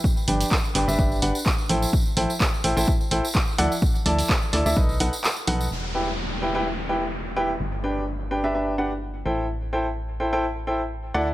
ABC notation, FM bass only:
X:1
M:4/4
L:1/16
Q:"Swing 16ths" 1/4=127
K:Ador
V:1 name="FM bass" clef=bass
z2 G,,, z3 G,,, G,,, G,,,2 G,,, z3 A,,, z | z2 A,,, z3 A,,, A,,, z2 A,,, z3 D,, z | z2 D,, z3 D,, D,, B,,,2 B,,, z3 B,,,2 | E,,,16 |
G,,,12- G,,,2 A,,,2- | A,,,12- A,,,2 D,,2 |]